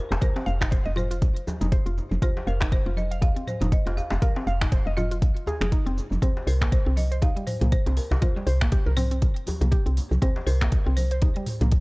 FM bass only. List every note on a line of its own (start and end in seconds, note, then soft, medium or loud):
0.11 0.18 F1 loud
0.47 0.77 F1 loud
0.86 1.23 F1 medium
1.22 1.31 C2 medium
1.61 1.75 F1 loud
1.86 2.00 F1 medium
2.11 2.18 F1 medium
2.47 2.77 F1 loud
2.86 3.24 F1 medium
3.22 3.31 C2 medium
3.61 3.75 F1 loud
3.86 4.00 F1 medium
4.11 4.18 F1 loud
4.47 4.77 F1 loud
4.86 5.24 F1 medium
5.22 5.31 C2 medium
5.61 5.75 F1 loud
5.86 6.00 F1 medium
6.11 6.18 F1 medium
6.47 6.77 C2 loud
6.86 7.24 C2 medium
7.22 7.31 G1 medium
7.62 7.75 C2 loud
7.86 8.00 C2 medium
8.11 8.18 C2 loud
8.47 8.77 C2 loud
8.86 9.24 C2 medium
9.22 9.31 G1 medium
9.61 9.75 C2 loud
9.86 10.00 C2 medium
10.11 10.18 C2 loud
10.47 10.77 C2 loud
10.86 11.24 C2 medium
11.22 11.31 G1 medium
11.61 11.75 C2 loud